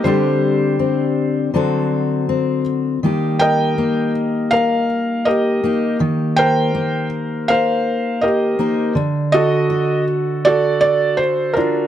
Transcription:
<<
  \new Staff \with { instrumentName = "Felt piano" } { \time 4/4 \key d \phrygian \tempo 4 = 81 << { c''2.~ c''8 r8 | r8 g''4 r8 f''4 ees''4 | r8 g''4 r8 f''4 ees''4 | r8 ees''4 r8 d''8 d''8 c''8 bes'8 | } \\ { <g' a'>2.~ <g' a'>8 r8 | r8 <bes' ees''>4. bes'4 <g' bes'>4 | r8 <bes' c''>4. <bes' c''>4 <g' bes'>4 | r8 <fis' a'>4. <fis' a'>4. <d' f'>8 | } >> }
  \new Staff \with { instrumentName = "Steel-string acoustic guitar" } { \time 4/4 \key d \phrygian << { <g c' d' g'>4 c'4 <fis c' fis' a'>4 c'4 | <g bes ees' g'>4 bes2~ bes8 <bes ees' g'>8~ | <bes ees' g'>4 bes2~ bes8 <bes ees' bes'>8 | r4 fis'2~ fis'8 fis'8 | } \\ { d2 d2 | ees1 | ees1 | d1 | } >> }
>>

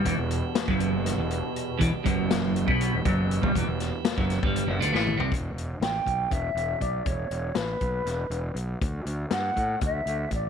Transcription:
<<
  \new Staff \with { instrumentName = "Flute" } { \time 7/8 \key e \minor \tempo 4 = 120 r2. r8 | r2. r8 | r2. r8 | r4 g''4 e''4 d''8 |
cis''4 b'2 r8 | r4 fis''4 e''4 d''8 | }
  \new Staff \with { instrumentName = "Tonewheel organ" } { \time 7/8 \key e \minor <e b g' b'>2.~ <e b g' b'>8~ | <e b g' b'>2.~ <e b g' b'>8~ | <e b g' b'>2.~ <e b g' b'>8 | r2. r8 |
r2. r8 | r2. r8 | }
  \new Staff \with { instrumentName = "Synth drone" } { \clef bass \time 7/8 \key e \minor <e, b,>2.~ <e, b,>8~ | <e, b,>2.~ <e, b,>8~ | <e, b,>2.~ <e, b,>8 | r2. r8 |
r2. r8 | r2. r8 | }
  \new Staff \with { instrumentName = "Clean electric guitar" } { \clef bass \time 7/8 \key e \minor e,16 e,8 r8 fis,4 e,8 r8. | e,16 r16 fis,4~ fis,16 b,8 e,16 fis,8. g,16 | e,16 e,8 r8 fis,8 g,8 fis,16 d16 a,8 c16 | r2. r8 |
r2. r8 | r2. r8 | }
  \new Staff \with { instrumentName = "Fingered electric bass" } { \clef bass \time 7/8 \key e \minor e,,16 e,,8 r8 fis,,4 e,,8 r8. | e,,16 r16 fis,,4~ fis,,16 b,,8 e,,16 fis,,8. g,,16 | e,,16 e,,8 r8 fis,,8 g,,8 fis,,16 d,16 a,,8 c,16 | e,,8 e,,8 a,,8 b,,8 e,,8 e,,8 b,,8 |
e,,8 e,,8 a,,8 b,,8 e,,8 e,,8 b,,8 | d,8 d,8 g,8 a,8 d,8 d,8 a,,8 | }
  \new DrumStaff \with { instrumentName = "Drums" } \drummode { \time 7/8 <hh bd>8 hh8 <hh sn>16 bd16 hh8 <hh sn>8 hh8 hh8 | <hh bd>8 <hh bd>8 <hh sn>8 hh16 bd16 hh8 <hh bd>8 hh16 bd16 | <hh bd>8 <hh sn>8 <hh sn>16 bd16 <hh sn>16 bd16 hh8 hh16 sn16 toml16 tomfh16 | <hh bd>8 hh8 <hh sn>8 <hh bd>8 <hh bd>8 hh8 <hh bd>8 |
<hh bd>8 hh8 <hh sn>8 <hh bd>8 <hh sn>8 hh8 hh8 | <hh bd>8 hh8 <hh sn>8 <hh bd>8 <hh bd>8 hh8 <hh bd>8 | }
>>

